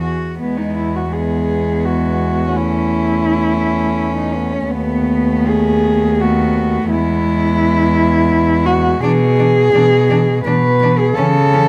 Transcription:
cello
Already playing: E2 G#4
0.00 F#4
0.39 E2 G#3 B3
0.58 D#4
0.77 E4
0.96 F#4
1.12 G#3 B3 G#4
1.85 F#4
2.55 A3 C#4 E4
4.17 D#4
4.35 B3
4.52 C#4
4.69 D#2 A3 B3
5.48 G#4
6.18 A3 B3 F#4
6.89 E2 G#3 B3 E4
8.66 F#4
9.01 B2 E3 D4 G#4
9.36 E3 D4
9.72 B2 E3 D4
10.08 E3 D4
10.44 B2 E3 D4 B4
10.80 E3 D4
10.98 G#4
11.15 C#3 E3 C#4 A4
11.53 E3 C#4

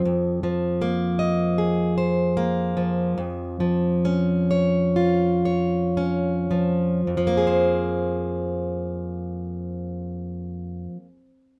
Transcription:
steel-string acoustic guitar
Already playing: F3
0.05 F2
0.43 F3
0.82 A#3
1.19 D#5
1.58 G#4
1.98 C5
2.37 A#3
2.77 F3
3.18 F2
3.60 F3
4.05 C#4
4.51 C#5
4.96 F4
5.45 C#5
5.97 C#4
6.51 F3
7.07 F2
7.17 F3
7.27 A#3
7.37 G#4
7.47 C5

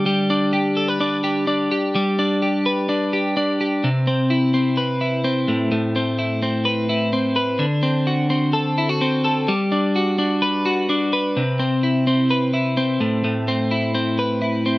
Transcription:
clean electric guitar
Already playing: D3 D4
0.06 G3
0.30 D4
0.53 G4
0.77 A4
0.88 B4
1.01 D4
1.24 G4
1.47 D4
1.72 G4
1.95 G3
2.19 D4
2.42 G4
2.66 B4
2.89 D4
3.13 G4
3.37 D4
3.61 G4
3.84 C3
4.07 C4
4.30 E4
4.54 C4
4.77 B4
5.01 E4
5.24 C4
5.48 A2
5.72 A2
5.96 C4
6.19 E4
6.43 C4
6.65 B4
6.89 E4
7.13 C4
7.36 B4
7.59 D3
7.83 C4
8.07 F#4
8.30 C4
8.53 A4
8.78 E4
8.89 F#4
9.01 C4
9.24 A4
9.48 G3
9.72 D4
9.96 F#4
10.19 D4
10.42 B4
10.65 F#4
10.89 D4
11.13 B4
11.37 C3
11.59 C4
11.83 E4
12.07 C4
12.31 B4
12.54 E4
12.77 C4
13.01 A2
13.24 A2
13.48 C4
13.71 E4
13.95 C4
14.19 B4
14.42 E4
14.66 C4

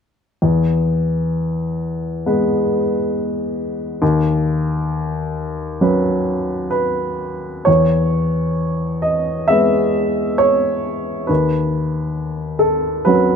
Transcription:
upright piano
0.42 E2
2.26 G#3 B3 B4
4.02 D#2
5.81 F#3 C#4 B4
6.71 B4
7.65 E2 C#5
9.02 D#5
9.48 G#3 B3 B4 E5
10.38 C#5
11.27 D#2 B4
12.59 A4
13.05 F#3 C#4 F#4 B4

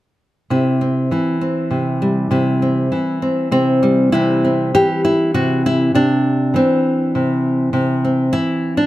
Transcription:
nylon-string guitar
0.50 C3 E4
0.81 C4
1.11 E3 E4
1.41 C4
1.71 C3
2.02 G3
2.31 C3 E4
2.62 C4
2.92 E3 E4
3.22 C4
3.51 C3 C4
3.83 G3
4.12 C3 E3 G3 C4 E4
4.45 C4
4.75 E3 G4
5.05 E4
5.34 C3 F#4
5.66 E4
5.95 C3 D4
6.54 E3 C4
7.15 C3
7.73 C3
8.05 C4
8.33 E3 E4
8.77 D4

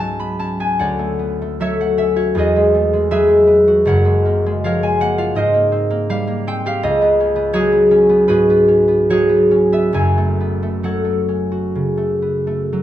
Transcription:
harp
Already playing: C#2 G#2 B3 F#4 G#4 B4 C#5 G#5
0.00 F#3 A5
0.19 B3 B5
0.39 C#4 A5
0.60 B3 G#5
0.79 D2 C#5 D5 F#5
0.99 A3
1.19 B3
1.42 A3
1.60 F#3 A4 C#5 E5
1.80 A3 F#5
1.97 C#4 E5
2.16 F#4 C#5
2.35 E2 G#4 B4
2.39 D#5
2.56 G#3
2.74 A3
2.93 G#3
3.11 F#3 G#4 B4 E5
3.28 G#3
3.47 B3
3.68 F#4
3.85 F#1 F#2 A#4 C#5 F#5
4.05 G#3
4.25 A#3
4.46 G#3
4.64 F3 A#4 C#5 F5
4.83 G#3 G#5
5.00 A#3 F#5
5.18 F4 F5
5.35 G#2 A#4 C5 D#5
5.54 A#3
5.72 C4
5.90 A#3
6.10 G3 F5
6.27 A#3
6.47 C4 G5
6.66 G4 F5
6.83 C#2 D#5
7.02 B3
7.20 C#4
7.36 B3
7.53 F#3 F#4 G#4 C#5
7.72 B3
7.91 C#4
8.09 B3
8.28 G#2 F#4 G#4 B4
8.50 B3
8.68 C#4
8.88 B3
9.10 F#3 F#4 G#4 C#5
9.29 B3
9.51 C#4
9.72 B3 E5
9.93 F#1 F#2 C#5 G#5
10.17 A3
10.41 B3
10.63 A3
10.83 F#3 A4 C#5 F#5
11.04 A3
11.29 C#4
11.52 F#4
11.75 C#3
11.97 A3
12.22 B3
12.47 A3
12.73 F#3

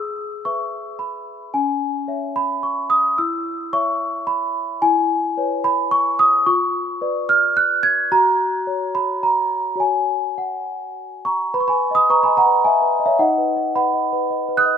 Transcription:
celesta
Already playing: G#4 E6
0.45 B4 E5 C#6
0.99 B5
1.54 C#4 G#5
2.08 C#5 E5
2.36 B5
2.63 C#6
2.90 D#6
3.18 E4 E6
3.73 C#5 E5 C#6
4.27 B5
4.82 E4 G#5
5.37 B4 C#5
5.64 B5
5.91 C#6
6.19 D#6
6.46 F4 C#6
7.01 B4 D5
7.29 F6
7.57 F#6
7.83 G#6
8.12 F#4 A#5
8.67 C#5
8.95 B5
9.23 A#5
9.76 F#4 C#5
9.80 G#5
10.38 F#5
11.25 A#5 C#6
11.54 B4 B5
11.60 C#6
11.68 G#5 B5
11.73 B4
11.91 D#5 D#6
11.97 B5
12.10 B4 A#5 C#6
12.23 G#5 B5
12.28 D#5
12.37 F#5 A#5
12.46 B4
12.64 D#5 E5 G#5
12.82 B4
13.00 D#5
13.06 C#5 E5
13.19 D#4 D#5 F#5
13.38 B4
13.57 D#5
13.76 B4 F#5 B5
13.94 D#5
14.13 B4
14.30 D#5
14.49 B4
14.57 D#6 F#6
14.66 D#5

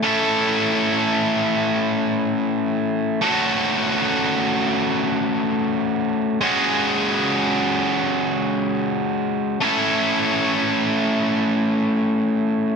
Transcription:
distorted electric guitar
0.03 A3 C#4 E4 A4
3.22 A3 C#4 F#4 A4
6.41 G#3 C#4 F#4 G#4
9.60 A3 C#4 E4 A4

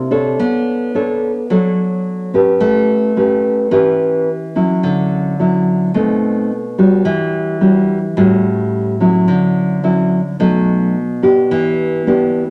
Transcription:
nylon-string guitar
Already playing: C3
0.11 D4 A4 C#5
0.40 B3
0.95 D4 A4 C#5
1.50 F#3 D4 A4 C#5
2.34 C#4 G4 B4
2.60 A3
3.17 C#4 G4 B4
3.71 E3 C#4 G4 B4
4.55 F#3 C#4 E4
4.83 D3
5.39 F#3 C#4 E4
5.94 B2 A3 C4 D#4
6.78 G3 D4 F#4
7.05 E3
7.61 G3 D4 F#4
8.17 A2 G3 C#4 F#4
9.00 F#3 C#4 E4
9.28 D3
9.83 F#3 C#4 E4
10.39 B2 F#3 A3 D#4
11.22 B3 D4 G4
11.51 E3
12.07 B3 D4 G4

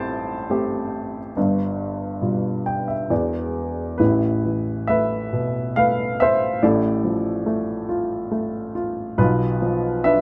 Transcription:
upright piano
Already playing: A1 A2 A3 C4 G4 C5 G5 A5
0.50 A3 C4 G4
1.37 G1 G2
2.21 B2 G3 F4
2.66 G5
2.88 E5
3.10 E1 E2 D5
3.98 A1 A2 E4 B4
4.45 E3
4.87 A3 B4 E5
5.33 B2
5.76 A3 B4 F5
6.20 C5 E5
6.63 A1 A2 A4 D5
7.04 F3
7.46 A3
7.89 F4
8.31 A3
8.75 F4
9.18 B1 B2 F4 B4
9.62 F3
10.04 D4 B4 E5

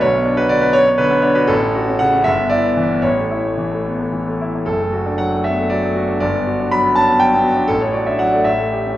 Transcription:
grand piano
0.01 B1 C#5
0.14 B3
0.25 D4
0.37 F#4 B4
0.49 D3 D5
0.61 B3 B4
0.73 C#4 C#5
0.87 B3
0.98 D3 B4
1.10 B3
1.22 D4 C#5
1.35 F#4 B4
1.47 A1 A4
1.62 C#4
1.75 F#4
1.88 C#4
1.99 C#3 F#5
2.13 C#4
2.24 G1 E5
2.37 B3
2.50 E4 D5
2.63 B3
2.77 E3
2.90 B3
3.02 A1 C#5
3.18 A3
3.31 E4
3.44 A3
3.57 E3
3.72 A3
3.85 B3
3.99 A3
4.12 E3
4.27 A3
4.41 E4
4.55 A3
4.66 F#1 A4
4.80 A3
4.93 F#4
5.06 D4
5.18 F#3 F#5
5.32 A3
5.44 B3 E5
5.57 A3
5.70 F#3 D5
5.83 A3
5.96 F#4
6.08 D4
6.20 G1 D5
6.35 B3
6.47 F#4
6.59 D4
6.71 F#3 B5
6.84 B3
6.95 C#4 A5
7.08 B3
7.20 F#3 G5
7.33 B3
7.44 F#4
7.56 D4
7.68 A1 A4
7.81 A3 C#5
7.93 F#4 D5
8.06 D4 E5
8.19 F#3 F#5
8.33 A3 D5
8.45 A1 E5
8.59 A3
8.72 G4
8.86 C#4

